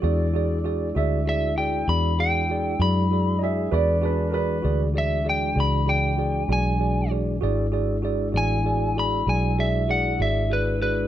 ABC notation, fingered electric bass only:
X:1
M:12/8
L:1/8
Q:3/8=65
K:Emix
V:1 name="Fingered electric bass" clef=bass
E,,3 D,,3 E,,3 F,,3 | E,,3 D,,3 C,,3 B,,,3 | G,,,3 A,,,3 B,,,3 G,,,3 |]